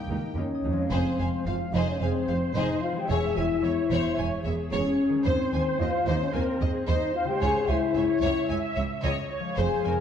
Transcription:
Already playing: harp D#3 A#3 A#4 D#5 D#6, violin section G4 G5
0.00 harp D#4
0.08 cello section C#2, double bass section D#2, viola section A#3 D#4
0.18 harp A#4
0.35 cello section D#2, double bass section D#2, viola section A#3 D#4, french horn section C#4, flute section C#5, harp D#5
0.55 harp D#6
0.64 double bass section D#2, cello section F2, viola section A#3 D#4
0.73 harp F3 D#5
0.78 harp G#3
0.82 harp G#4
0.86 harp C5
0.91 double bass section F1, cello section F2, french horn section C4, violin section G#4 C5, flute section C5
1.18 double bass section F1, cello section F2, violin section C5 F5 G#5
1.46 double bass section F1, cello section F2, french horn section F4, violin section C5 F5, flute section F5
1.73 double bass section F1, cello section F2, french horn section D#4, violin section G#4 C5, flute section D#5
1.88 french horn section C#4, flute section C#5
1.99 double bass section F1, cello section F2, french horn section C4, viola section G#4, violin section C5 F5 G#5, flute section C5
2.28 double bass section F1, cello section F2, viola section C5, violin section C5 F5
2.54 double bass section F1, cello section F2, french horn section D#4, violin section G#4 C5, flute section D#5
2.81 french horn section F4, flute section F5
2.92 harp E3
2.96 harp G#3, french horn section G4, flute section G5
3.01 harp G#4
3.05 harp C#5, violin section C#5
3.10 double bass section E1, cello section E2, french horn section G#4, violin section C#5, viola section E5, flute section G#5
3.36 double bass section E1, cello section E2, french horn section E4, violin section C#5 G#5, flute section E5
3.64 double bass section E1, cello section E2, viola section C#5, violin section C#5 E5
3.91 double bass section E1, cello section E2, viola section C5, violin section C#5
4.18 double bass section E1, cello section E2, viola section C#5, violin section C#5 G#5
4.44 double bass section E1, cello section E2, viola section G#4, violin section C#5 E5
4.72 double bass section E1, cello section E2, french horn section C#4, flute section C#5, violin section C#5
5.09 harp D#3
5.14 harp G#3
5.18 harp G#4
5.23 double bass section D#2, cello section D#2, french horn section C4, harp C5, violin section C5, viola section C5, flute section C5
5.53 double bass section D#2, cello section D#2, violin section C5 G#5
5.79 double bass section D#2, cello section D#2, french horn section F4, violin section C5 D#5, flute section F5
6.06 double bass section D#2, cello section D#2, french horn section D#4, violin section C5, flute section D#5
6.21 french horn section C#4, flute section C#5
6.33 double bass section D#2, cello section D#2, french horn section C4, viola section A#4, violin section C5 G#5, flute section C5
6.61 cello section D#2, double bass section D#2, viola section G#4, violin section C5 D#5
6.87 cello section D#2, double bass section D#2, french horn section D#4, violin section C5, viola section C5, flute section D#5
7.13 french horn section F4, flute section F5
7.24 harp C#3, french horn section G4, flute section G5
7.29 harp G#3
7.33 harp G#4
7.38 harp C#5, violin section C#5, flute section G#5
7.42 cello section C#2, double bass section C#2, french horn section G#4
7.68 double bass section C#2, cello section C#2, french horn section E4, violin section C#5 G#5, flute section E5
7.95 cello section C#2, double bass section C#2, violin section C#5 E5, viola section C#5
8.21 double bass section C#2, cello section C#2, violin section C#5
8.48 double bass section C#2, cello section C#2, violin section C#5 G#5, viola section E5
8.75 double bass section C#2, cello section C#2, violin section C#5 E5
9.03 double bass section C#2, cello section C#2, violin section C#5, viola section D#5
9.31 viola section C#5
9.40 harp F3
9.44 harp G#3
9.49 harp G#4
9.54 harp C5, violin section C5, flute section G#5
9.58 double bass section F1, cello section F2, french horn section G#4, viola section C5
9.84 double bass section F1, cello section F2, viola section A#4, violin section C5 G#5

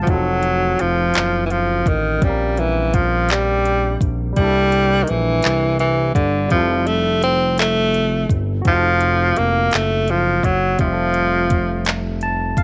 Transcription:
0.02 tenor saxophone F3, tine electric piano F#4
0.07 analog synth bass F1, tenor saxophone F#3, tine electric piano C4 D#4, kick, closed hi-hat
0.11 tine electric piano F4 A4
0.43 closed hi-hat
0.79 analog synth bass F1, tenor saxophone F3, closed hi-hat
1.14 analog synth bass F#1, clap, closed hi-hat
1.46 tenor saxophone E3
1.50 tenor saxophone F3, closed hi-hat
1.86 analog synth bass A1, tenor saxophone D#3, kick, closed hi-hat
2.19 tine electric piano G3 C4, kick, closed hi-hat
2.23 analog synth bass A#1, tenor saxophone G3, tine electric piano C#4 F5
2.29 tine electric piano A#4
2.57 tenor saxophone E3, closed hi-hat
2.94 tenor saxophone F3, kick, closed hi-hat
3.29 tenor saxophone G3, clap, closed hi-hat
3.65 closed hi-hat
4.01 analog synth bass A#1, kick, closed hi-hat
4.33 tine electric piano G3 A#3, tenor saxophone G3, kick, closed hi-hat
4.38 analog synth bass C2, tine electric piano D4 E4
4.44 tine electric piano A4
4.72 closed hi-hat
5.03 tenor saxophone D#3
5.08 analog synth bass A#1, tenor saxophone E3, closed hi-hat
5.43 analog synth bass C2, clap, closed hi-hat
5.79 tenor saxophone E3, closed hi-hat
6.15 analog synth bass G1, tenor saxophone D3, kick, closed hi-hat
6.48 analog synth bass F1, tenor saxophone F3, tine electric piano G3 C4, kick, closed hi-hat
6.53 tine electric piano E4 F4
6.59 tine electric piano A4
6.87 tenor saxophone A3, closed hi-hat
7.23 tenor saxophone C4, closed hi-hat
7.58 tenor saxophone A3, clap, closed hi-hat
7.94 closed hi-hat
8.29 analog synth bass G1, kick, closed hi-hat
8.62 tine electric piano C4 F#4, kick, closed hi-hat
8.66 analog synth bass F1, tenor saxophone F3, tine electric piano D#4 F4
8.72 tine electric piano A4
9.01 closed hi-hat
9.36 analog synth bass F1, tenor saxophone A#3, closed hi-hat
9.71 analog synth bass F#1, tenor saxophone A3, clap, closed hi-hat
10.08 tenor saxophone F3, closed hi-hat
10.43 analog synth bass F#1, tenor saxophone F#3, kick, closed hi-hat
10.76 analog synth bass F1, tenor saxophone F3, tine electric piano G3 C4, kick, closed hi-hat
10.81 tine electric piano F4 E5
10.87 tine electric piano G4
10.93 tine electric piano A4
11.14 closed hi-hat
11.50 kick, closed hi-hat
11.85 clap, closed hi-hat
12.21 tine electric piano A5, closed hi-hat
12.57 analog synth bass F1, tine electric piano F5, kick, closed hi-hat

